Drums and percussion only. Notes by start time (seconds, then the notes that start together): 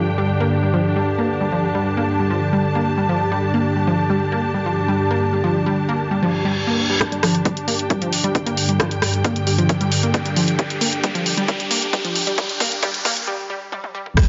7.01 kick, cross-stick, closed hi-hat
7.12 closed hi-hat
7.23 cross-stick, open hi-hat
7.35 closed hi-hat
7.45 kick, closed hi-hat
7.57 closed hi-hat
7.68 open hi-hat
7.79 closed hi-hat
7.90 kick, closed hi-hat
8.02 closed hi-hat
8.13 open hi-hat
8.24 closed hi-hat
8.35 kick, closed hi-hat
8.47 closed hi-hat
8.57 open hi-hat
8.69 closed hi-hat
8.80 kick, cross-stick, closed hi-hat
8.91 closed hi-hat
9.02 cross-stick, open hi-hat
9.14 closed hi-hat
9.24 kick, closed hi-hat
9.36 closed hi-hat
9.47 open hi-hat
9.58 closed hi-hat
9.69 kick, closed hi-hat
9.81 closed hi-hat
9.92 open hi-hat
10.03 closed hi-hat
10.14 kick, closed hi-hat
10.26 closed hi-hat
10.36 open hi-hat
10.48 closed hi-hat
10.59 kick, closed hi-hat
10.70 closed hi-hat
10.81 open hi-hat
10.93 closed hi-hat
11.04 kick, closed hi-hat
11.15 closed hi-hat
11.26 open hi-hat
11.38 closed hi-hat
11.48 kick, closed hi-hat
11.60 closed hi-hat
11.71 open hi-hat
11.82 closed hi-hat
11.93 kick, closed hi-hat
12.05 closed hi-hat
12.15 open hi-hat
12.27 closed hi-hat
12.38 kick, closed hi-hat
12.49 closed hi-hat
12.60 kick, open hi-hat
12.72 closed hi-hat
12.83 kick, closed hi-hat
12.94 closed hi-hat
13.05 kick, open hi-hat
13.17 closed hi-hat
13.72 high tom
13.84 high tom
14.06 mid tom
14.17 kick, cross-stick, closed hi-hat, crash